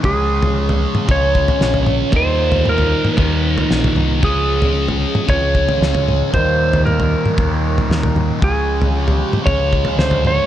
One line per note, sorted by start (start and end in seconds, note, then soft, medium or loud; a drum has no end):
0.01 0.85 C#2 medium
0.01 1.05 C#3 medium
0.01 2.12 F3 medium
0.01 1.07 G#3 medium
0.01 2.11 C#4 medium
0.01 1.08 C#4 medium
0.01 2.11 G#4 medium
0.01 1.12 G#4 medium
0.01 kick loud
0.01 floor tom medium
0.42 floor tom medium
0.69 floor tom medium
0.95 mid tom medium
1.06 1.49 C#2 medium
1.06 2.11 C#3 medium
1.06 2.12 G#3 medium
1.06 2.13 C#4 medium
1.06 kick loud
1.06 floor tom medium
1.11 2.11 C#5 loud
1.35 kick medium
1.48 floor tom medium
1.61 2.02 A#1 medium
1.61 snare medium
1.74 floor tom medium
1.86 mid tom medium
2.10 3.14 D#2 medium
2.10 2.94 D#2 medium
2.10 3.16 A#2 medium
2.10 kick loud
2.10 floor tom medium
2.14 3.17 D#3 medium
2.14 4.22 G3 medium
2.14 4.22 D#4 medium
2.14 4.22 A#4 medium
2.14 2.69 C5 loud
2.52 floor tom medium
2.65 3.14 A#4 medium
2.65 mid tom medium
2.78 floor tom medium
3.05 mid tom medium
3.14 4.20 D#2 medium
3.14 3.59 D#2 medium
3.14 4.21 A#2 medium
3.14 3.26 B4 medium
3.14 kick loud
3.14 floor tom medium
3.19 4.22 D#3 medium
3.26 3.39 A#4 medium
3.39 3.51 B4 medium
3.51 3.95 A#4 medium
3.58 floor tom medium
3.71 3.95 A#1 medium
3.71 snare medium
3.84 floor tom medium
3.84 mid tom medium
3.96 4.20 C2 medium
3.96 mid tom medium
4.21 5.04 C#2 medium
4.21 5.25 C#3 medium
4.21 6.30 F3 medium
4.21 5.26 G#3 medium
4.21 6.31 C#4 medium
4.21 6.30 G#4 medium
4.21 5.32 G#4 medium
4.21 kick loud
4.21 floor tom medium
4.25 5.27 C#4 loud
4.62 floor tom medium
4.88 floor tom medium
5.15 mid tom medium
5.26 5.69 C#2 medium
5.26 6.30 C#3 medium
5.26 6.31 G#3 medium
5.26 6.32 C#4 medium
5.26 6.34 C#5 loud
5.26 kick loud
5.26 floor tom medium
5.55 kick medium
5.69 floor tom medium
5.81 6.21 C#2 medium
5.81 snare medium
5.95 floor tom medium
6.08 mid tom medium
6.30 7.34 D#2 medium
6.30 7.14 D#2 medium
6.30 7.35 A#2 medium
6.30 7.37 D#3 medium
6.30 8.40 G3 medium
6.30 8.40 D#4 medium
6.30 8.40 A#4 medium
6.30 6.82 C5 medium
6.30 kick medium
6.35 floor tom medium
6.73 floor tom medium
6.86 8.12 A#4 medium
6.86 mid tom medium
7.00 floor tom medium
7.26 mid tom medium
7.35 8.39 D#2 medium
7.35 7.78 D#2 medium
7.35 8.40 A#2 medium
7.35 8.41 D#3 medium
7.35 kick loud
7.35 floor tom medium
7.78 floor tom medium
7.90 8.30 D#2 medium
7.90 snare medium
8.03 floor tom medium
8.03 mid tom medium
8.16 mid tom medium
8.40 9.22 C#2 medium
8.40 9.42 C#3 medium
8.40 10.46 F3 medium
8.40 9.44 G#3 medium
8.40 10.46 C#4 medium
8.40 9.46 C#4 loud
8.40 10.46 G#4 medium
8.40 9.10 G#4 medium
8.40 kick loud
8.40 floor tom medium
8.82 floor tom medium
9.08 9.43 G4 medium
9.08 floor tom medium
9.33 mid tom medium
9.43 10.46 C#3 medium
9.43 10.46 G#3 medium
9.43 10.46 C#4 medium
9.43 9.98 C#5 loud
9.43 kick loud
9.43 floor tom medium
9.48 9.87 C#2 medium
9.73 kick medium
9.85 floor tom medium
9.98 10.38 D2 medium
9.98 10.25 C5 medium
9.98 snare medium
10.11 floor tom medium
10.25 10.46 C#5 loud
10.25 mid tom medium